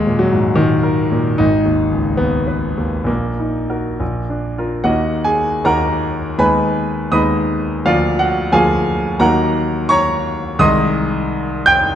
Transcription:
Already playing: D#2 G#3
0.07 A#2
0.19 F#3
0.32 G#2
0.56 A#2 D#3
0.83 A#4
1.12 A#2
1.38 G#1 D#4
1.65 D#2
1.91 C#2
2.17 D#2 B3
2.47 B4
2.77 D#2
3.04 A#1 A#3
3.39 D#4
3.70 F#4 A#4
4.00 A#1
4.30 D4
4.58 F4 A#4
4.84 D#2 A#3 D#4 F#4 D#5 F#5
5.24 G#4 G#5
5.64 D#2 A#3 D#4 F#4 A#4 F#5 A#5
6.38 D#2 G#3 B3 D#4 B4 G#5 B5
7.11 D#2 G#3 B3 D#4 D#5 B5 D#6
7.85 D2 F3 A#3 F4 D5 F5
8.19 F#4 F#5
8.52 D2 F3 A#3 F4 G#4 F5 G#5
9.19 D#2 F#3 A#3 D#4 A#4 F#5 A#5
9.89 C#5 A#5 C#6
10.59 C2 D#3 G#3 D#4 D#5 C6 D#6
11.66 G5 G6

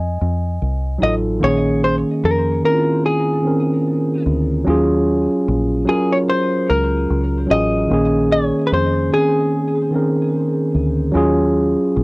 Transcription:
Already playing: F2 D#5 G#5
0.21 F2
0.62 C2
0.98 A1 F#3 D#4 F4
1.03 A4 D#5
1.39 A#1 D#3 A#3 C#4
1.44 G#4 C#5
1.84 C5
2.24 F2 A#4
2.63 D#3 C4 C#4 A#4
2.68 E4
2.75 F4
3.06 G#4
3.42 D#3 C4 C#4
3.47 A#4
4.26 D2
4.65 D#2 F#3 C#4 F4
4.70 G#4
5.48 A#1
5.85 F#3 C#4 F4 G#4
5.90 A#4
6.12 C#5
6.30 C5
6.70 C#2 A#4
7.10 C#2
7.47 A1 F#3 C#4 F4
7.51 G#4 D#5
7.88 A#1 D#3 A#3 C#4
7.93 G#4
8.32 C#5
8.67 B4
8.72 F2 C5
9.10 D#3 C4 C#4 G#4
9.15 G#4
9.90 D#3 C4 C#4
9.96 A#4
10.75 D2
11.12 D#2 F#3 C#4 F4
11.17 G#4
11.97 A#1

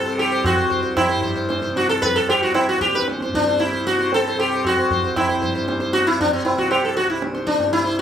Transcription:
Already playing: C2 G2 C3 A4
0.04 C3 C5
0.18 G4, tabla na
0.32 C5
0.44 F#4, tabla na, tabla ge
0.58 C2 C5
0.70 C5, tabla ge
0.83 C5
0.97 E4, tabla na, tabla ge
1.09 G2 C5
1.22 C5, tabla ge
1.36 C5
1.49 C5, tabla te
1.62 C5
1.68 C3
1.76 F#4, tabla te
1.89 A4
2.02 B4, tabla tin, tabla ge
2.16 A4
2.23 C3
2.29 G4, tabla na
2.43 F#4
2.54 E4, tabla na
2.69 F#4
2.76 C2
2.81 G4, tabla ke
2.95 B4, tabla te
3.08 C5, tabla te
3.21 C5, tabla te
3.29 G2
3.35 D4, tabla ke
3.47 C5, tabla te
3.60 E4, tabla te
3.73 C5
3.84 C3 F#4, tabla te
4.00 C5
4.12 A4, tabla tin
4.28 C5
4.35 C3
4.39 G4, tabla na
4.53 C5
4.65 F#4, tabla na, tabla ge
4.79 C5
4.90 C2 C5, tabla ge
5.04 C5
5.16 E4, tabla na, tabla ge
5.29 C5
5.42 G2 C5, tabla ge
5.55 C5
5.68 C5, tabla te
5.80 C5
5.93 C3 F#4, tabla te
6.07 E4
6.20 D4, tabla tin, tabla ge
6.33 C4
6.45 E4, tabla na
6.52 C3
6.58 F#4, tabla ke
6.71 G4, tabla na
6.85 A4
6.97 F#4, tabla te
7.06 C2
7.10 E4
7.22 tabla te
7.35 C5, tabla te
7.47 D4, tabla ke
7.58 G2, tabla te
7.73 E4, tabla te
7.84 C5

